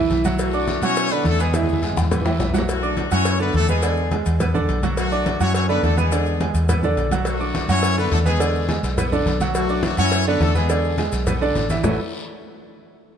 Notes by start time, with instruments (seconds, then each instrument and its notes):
Already playing: grand piano E3 E4 E5
0.10 fingered electric bass B1, cowbell, high conga, short guiro, maracas
0.24 grand piano F#3 F#4 F#5, cowbell, high conga, short guiro, maracas
0.39 horn section F#3 A3 F#4, cowbell, high conga, long guiro, maracas
0.53 grand piano D4 D5 D6, high conga, maracas
0.67 cowbell, high conga, short guiro, maracas
0.82 fingered electric bass B2, grand piano F#3 F#4 F#5, horn section C#4 E4 C#5, cowbell, high conga, short guiro, maracas
0.96 cowbell, high conga, maracas
1.11 grand piano D3 D4 D5, horn section B3 D4 B4, high conga, maracas
1.24 fingered electric bass E2, horn section A3 D4 A4, cowbell, high conga, short guiro, maracas
1.39 horn section G#3 B3 G#4, grand piano B3 B4 B5, short guiro, maracas
1.53 grand piano E3 E4 E5, cowbell, high conga, long guiro, maracas
1.63 high conga
1.69 maracas
1.73 high conga
1.82 grand piano G#3 G#4 G#5, cowbell, high conga, short guiro, maracas
1.92 high conga
1.97 fingered electric bass E2, cowbell, high bongo, short guiro, maracas
2.02 low conga
2.11 grand piano B3 B4 B5, cowbell, high bongo, low conga, long guiro, maracas
2.21 low conga
2.25 grand piano E3 E4 E5, low bongo, maracas
2.39 fingered electric bass B1, cowbell, low bongo, low conga, short guiro, maracas
2.50 low conga
2.54 grand piano F#3 F#4 F#5, cowbell, low bongo, short guiro, maracas
2.58 low conga
2.68 horn section F#3 A3 F#4, cowbell, high conga, maracas
2.82 grand piano D4 D5 D6, high conga, maracas
2.97 cowbell, high conga, maracas
3.11 fingered electric bass F#2, grand piano F#3 F#4 F#5, horn section C#4 E4 C#5, cowbell, high conga, maracas
3.25 cowbell, high conga, maracas
3.39 grand piano D3 D4 D5, horn section B3 D4 B4, high conga, maracas
3.54 fingered electric bass E2, horn section A3 D4 A4, cowbell, high conga, maracas
3.68 horn section G#3 B3 G#4, grand piano B3 B4 B5, high conga, maracas
3.82 grand piano D3 D4 D5, cowbell, high conga, maracas
3.97 high conga, maracas
4.11 grand piano G#3 G#4 G#5, cowbell, high conga, maracas
4.26 fingered electric bass E2, cowbell, maracas
4.40 grand piano B3 B4 B5, cowbell, high conga, low conga, maracas
4.54 grand piano D3 D4 D5, high conga, low conga, maracas
4.69 fingered electric bass B1, cowbell, high conga, maracas
4.83 grand piano F#3 F#4 F#5, cowbell, high conga, maracas
4.97 horn section F#3 A3 F#4, cowbell, maracas
5.12 grand piano D4 D5 D6, high conga, maracas
5.26 cowbell, high conga, maracas
5.40 fingered electric bass F#2, grand piano F#3 F#4 F#5, horn section C#4 E4 C#5, cowbell, high conga, maracas
5.54 horn section C#4 F#4 C#5, cowbell, high conga, maracas
5.69 grand piano D3 D4 D5, horn section B3 D4 B4, high conga, maracas
5.83 fingered electric bass E2, horn section A3 D4 A4, cowbell, high conga, maracas
5.97 horn section G#3 B3 G#4, grand piano B3 B4 B5, high conga, maracas
6.12 grand piano D3 D4 D5, cowbell, high conga, maracas
6.26 high conga, maracas
6.40 grand piano G#3 G#4 G#5, cowbell, high conga, maracas
6.54 fingered electric bass E2, cowbell, maracas
6.69 grand piano B3 B4 B5, cowbell, high conga, low conga, maracas
6.83 grand piano D3 D4 D5, high conga, low conga, maracas
6.97 fingered electric bass B1, cowbell, high conga, maracas
7.11 grand piano F#3 F#4 F#5, cowbell, high conga, maracas
7.25 horn section F#3 A3 F#4, cowbell, high conga, long guiro, maracas
7.40 grand piano D4 D5 D6, high conga, maracas
7.55 cowbell, high conga, short guiro, maracas
7.68 fingered electric bass F#2, grand piano F#3 F#4 F#5, horn section C#4 E4 C#5, cowbell, short guiro, maracas
7.83 cowbell, high conga, long guiro, maracas
7.97 grand piano D3 D4 D5, horn section B3 D4 B4, high conga, maracas
8.11 fingered electric bass E2, horn section A3 D4 A4, cowbell, high conga, short guiro, maracas
8.25 horn section G#3 B3 G#4, grand piano B3 B4 B5, high conga, short guiro, maracas
8.40 grand piano D3 D4 D5, cowbell, maracas
8.54 high conga, maracas
8.69 grand piano G#3 G#4 G#5, cowbell, high conga, short guiro, maracas
8.83 fingered electric bass B1, cowbell, short guiro, maracas
8.98 grand piano B3 B4 B5, cowbell, high conga, low conga, long guiro, maracas
9.12 grand piano D3 D4 D5, high conga, low conga, maracas
9.26 fingered electric bass B1, cowbell, high conga, short guiro, maracas
9.40 grand piano F#3 F#4 F#5, cowbell, high conga, short guiro, maracas
9.55 horn section F#3 A3 F#4, cowbell, high conga, maracas
9.69 grand piano D4 D5 D6, high conga, maracas
9.83 horn section F#3 A3 F#4, cowbell, high conga, short guiro, maracas
9.97 fingered electric bass F#2, grand piano F#3 F#4 F#5, horn section C#4 E4 C#5, cowbell, high conga, short guiro, maracas
10.12 cowbell, high conga, maracas
10.26 grand piano D3 D4 D5, horn section B3 D4 B4, high conga, maracas
10.40 fingered electric bass E2, horn section A3 D4 A4, cowbell, high conga, short guiro, maracas
10.55 horn section G#3 B3 G#4, grand piano B3 B4 B5, high conga, short guiro, maracas
10.69 grand piano D3 D4 D5, cowbell, high conga, maracas
10.84 high conga, maracas
10.98 grand piano G#3 G#4 G#5, cowbell, high conga, short guiro, maracas
11.12 fingered electric bass B1, cowbell, short guiro, maracas
11.27 grand piano B3 B4 B5, cowbell, high conga, low conga, long guiro, maracas
11.41 grand piano D3 D4 D5, high conga, maracas
11.55 fingered electric bass A1, cowbell, high conga, short guiro, maracas
11.70 grand piano E3 E4 E5, cowbell, high conga, short guiro, maracas
11.84 fingered electric bass A1, horn section E3 E4, grand piano A3 E4 F#4 A4 B4 C#5, low bongo, low conga, long guiro, maracas